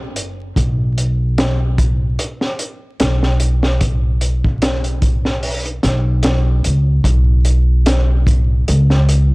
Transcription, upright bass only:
0.00 0.17 B1 medium
0.17 0.53 F#1 loud
0.57 2.15 B1 medium
3.01 5.81 B1 medium
5.84 6.62 B1 medium
6.66 7.02 C#2 medium
7.05 8.64 B1 medium
8.69 9.32 C#2 medium

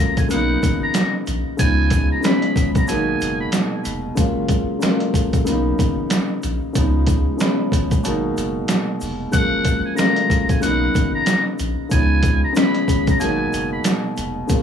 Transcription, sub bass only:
0.00 0.32 F#1 medium
0.31 0.56 B1 loud
0.63 0.89 G#1 loud
1.28 1.43 A#1 medium
1.60 2.11 C#2 loud
2.56 2.82 G#1 medium
2.89 3.14 G#1 loud
3.21 3.47 F#1 medium
3.86 4.11 F1 loud
4.18 4.69 F#1 loud
5.14 5.49 F#1 medium
5.47 5.73 B1 loud
5.79 6.05 G#1 loud
6.44 6.59 A#1 loud
6.76 7.27 C#2 loud
7.72 7.98 G#1 medium
8.05 8.31 G#1 loud
8.37 8.63 F#1 medium
9.02 9.27 F1 loud
9.34 9.85 F#1 loud
10.30 10.65 F#1 medium
10.63 10.89 B1 loud
10.95 11.21 G#1 loud
11.60 11.75 A#1 loud
11.92 12.43 C#2 loud
12.88 13.14 G#1 medium
13.21 13.47 G#1 loud
13.53 13.79 F#1 medium
14.18 14.43 F1 loud
14.50 14.63 F#1 loud

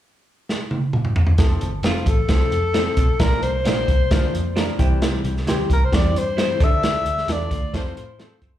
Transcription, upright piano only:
1.38 1.65 F3 medium
1.38 1.66 A3 medium
1.38 1.66 C4 medium
1.38 1.66 A4 medium
1.83 2.10 F3 medium
1.83 2.11 A3 medium
1.83 2.11 C4 medium
1.83 2.11 A4 medium
2.28 2.56 F3 medium
2.28 2.56 A3 medium
2.28 2.56 C4 medium
2.28 2.56 A4 medium
2.74 3.01 F3 medium
2.74 3.02 A3 medium
2.74 3.02 C4 medium
2.74 3.02 A4 medium
3.19 3.46 F3 medium
3.19 3.46 A#3 medium
3.19 3.47 D4 medium
3.19 3.47 A#4 medium
3.65 3.92 F3 medium
3.65 3.92 A#3 medium
3.65 3.92 D4 medium
3.65 3.93 A#4 medium
4.11 4.38 F3 medium
4.11 4.38 A#3 medium
4.11 4.38 D4 medium
4.11 4.38 F4 medium
4.56 4.79 F3 medium
4.56 4.79 A#3 medium
4.56 4.79 D4 medium
4.56 4.79 A#4 medium
4.78 5.33 E3 medium
4.78 5.33 G3 medium
4.78 5.33 C4 medium
4.78 5.34 G4 loud
5.47 5.73 E3 medium
5.47 5.74 G3 medium
5.47 5.74 C4 medium
5.47 5.74 G4 medium
5.92 6.19 E3 medium
5.92 6.19 G3 medium
5.92 6.19 C4 medium
5.92 6.19 G4 medium
6.37 6.60 E3 medium
6.37 6.60 G3 medium
6.37 6.61 C4 medium
6.37 6.61 G4 medium
6.60 7.15 F3 medium
6.60 7.15 A3 medium
6.60 7.15 D4 medium
6.60 7.15 A4 medium
7.28 7.55 F3 medium
7.28 7.55 A3 medium
7.28 7.55 D4 medium
7.28 7.55 A4 medium
7.73 8.00 F3 medium
7.73 8.00 A3 medium
7.73 8.01 C4 medium
7.73 8.01 A4 medium
8.18 8.45 F3 medium
8.18 8.46 A3 medium
8.18 8.46 C4 medium
8.18 8.46 C5 medium

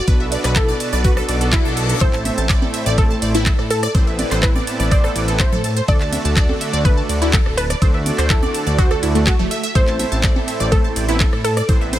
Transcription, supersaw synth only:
0.08 1.26 B2 medium
0.08 1.26 B3 medium
0.08 1.26 D4 medium
0.08 1.26 F#4 medium
0.08 1.26 A4 medium
0.08 1.26 B4 medium
1.29 1.38 B2 medium
1.29 1.38 B3 medium
1.29 1.38 D4 medium
1.29 1.38 F#4 medium
1.29 1.38 A4 medium
1.29 1.38 D5 medium
1.41 1.98 B2 medium
1.41 1.98 B3 medium
1.41 1.98 D4 medium
1.41 1.98 F#4 medium
1.41 1.98 A4 medium
1.41 1.98 D5 loud
2.01 3.32 A2 medium
2.01 3.32 A3 medium
2.01 3.32 C4 medium
2.01 3.32 E4 medium
2.01 3.32 A4 medium
2.01 3.32 C5 medium
3.35 3.48 A2 medium
3.35 3.48 B3 medium
3.35 3.48 C4 medium
3.35 3.48 E4 medium
3.35 3.48 A4 medium
3.35 3.48 B4 medium
3.95 5.25 A2 medium
3.95 5.25 B3 medium
3.95 5.25 C4 medium
3.95 5.25 E4 medium
3.95 5.25 A4 medium
3.95 5.25 B4 medium
5.28 5.41 A2 medium
5.28 5.41 B3 medium
5.28 5.41 C4 medium
5.28 5.41 E4 medium
5.28 5.41 A4 medium
5.28 5.41 B4 medium
5.88 7.19 D3 medium
5.88 7.19 A3 medium
5.88 7.19 D4 medium
5.88 7.19 F#4 medium
5.88 7.19 A4 medium
5.88 7.19 D5 medium
7.22 7.35 D3 medium
7.22 7.35 A3 medium
7.22 7.35 D4 medium
7.22 7.35 F#4 medium
7.22 7.35 A4 medium
7.22 7.35 D5 medium
7.82 9.12 D3 medium
7.82 9.12 A3 medium
7.82 9.12 D4 medium
7.82 9.12 F#4 medium
7.82 9.12 A4 medium
7.82 9.12 D5 medium
9.15 9.28 D3 medium
9.15 9.28 A3 medium
9.15 9.28 D4 medium
9.15 9.28 F#4 medium
9.15 9.28 A4 medium
9.15 9.28 D5 medium
9.75 11.06 A2 medium
9.75 11.06 A3 medium
9.75 11.06 C4 medium
9.75 11.06 E4 medium
9.75 11.06 A4 medium
9.75 11.06 C5 medium
11.09 11.22 A2 medium
11.09 11.22 B3 medium
11.09 11.22 C4 medium
11.09 11.22 E4 medium
11.09 11.22 A4 medium
11.09 11.22 B4 loud
11.69 11.99 A2 medium
11.69 11.99 B3 medium
11.69 11.99 C4 medium
11.69 11.99 E4 medium
11.69 11.99 A4 medium
11.69 11.99 B4 medium

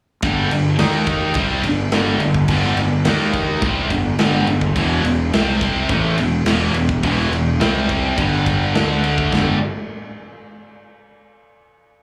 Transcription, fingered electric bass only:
0.23 0.49 G1 medium
0.51 0.77 G1 medium
0.78 1.31 D#2 medium
1.35 1.61 C2 loud
1.63 1.90 G1 medium
1.91 2.18 G1 medium
2.19 2.46 G1 medium
2.48 2.75 G1 loud
2.76 3.03 G1 medium
3.05 3.58 D#2 medium
3.62 3.88 C2 loud
3.91 4.17 G1 medium
4.18 4.45 G1 medium
4.48 4.74 G1 medium
4.76 5.02 E1 medium
5.03 5.30 E1 medium
5.33 5.85 C2 medium
5.89 6.16 A1 loud
6.17 6.44 E1 medium
6.45 6.72 E1 medium
6.73 7.00 E1 medium
7.03 7.29 E1 medium
7.30 7.57 E1 medium
7.59 8.13 C2 medium
8.18 8.71 G1 loud
8.74 9.28 D2 medium
9.33 9.59 G1 medium

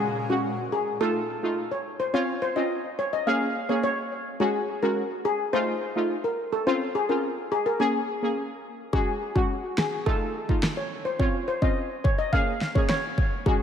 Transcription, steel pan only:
0.30 0.51 F#4 medium
0.72 0.94 G#4 medium
1.01 1.41 A4 loud
1.71 1.82 C#5 medium
2.00 2.10 C5 medium
2.14 2.25 C#5 medium
2.42 2.53 C5 medium
2.56 2.67 D#5 medium
2.99 3.10 C#5 medium
3.13 3.24 D#5 medium
3.27 3.38 F5 medium
3.69 3.80 C#5 medium
3.83 4.24 C#5 medium
4.40 4.51 G#4 medium
4.83 5.04 A#4 medium
5.25 5.47 G#4 medium
5.53 5.93 C5 medium
6.24 6.35 A#4 medium
6.52 6.63 A4 medium
6.67 6.78 C5 medium
6.95 7.06 G#4 medium
7.09 7.20 A#4 medium
7.52 7.62 G#4 medium
7.66 7.77 A#4 medium
7.80 8.20 G#4 medium
8.93 9.04 G#4 loud
9.35 9.57 F#4 medium
9.78 10.00 G#4 medium
10.06 10.46 A4 loud
10.77 10.88 C#5 medium
11.05 11.16 C5 medium
11.20 11.30 C#5 medium
11.48 11.59 C5 medium
11.62 11.73 D#5 medium
12.04 12.15 C#5 medium
12.18 12.29 D#5 medium
12.33 12.44 F5 medium
12.75 12.86 C#5 medium
12.89 13.29 C#5 medium
13.46 13.57 G#4 medium

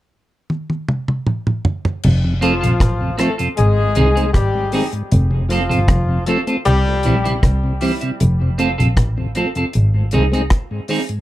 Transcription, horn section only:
2.42 3.15 F3 medium
2.42 3.16 F4 loud
3.19 3.35 A3 medium
3.19 3.35 A4 medium
3.57 4.31 G#3 loud
3.57 4.30 G#4 loud
4.34 4.89 G3 medium
4.34 4.89 G4 loud
5.50 6.23 F3 medium
5.50 6.23 F4 loud
6.26 6.43 A3 medium
6.26 6.43 A4 medium
6.65 7.39 G3 loud
6.65 7.39 G4 loud

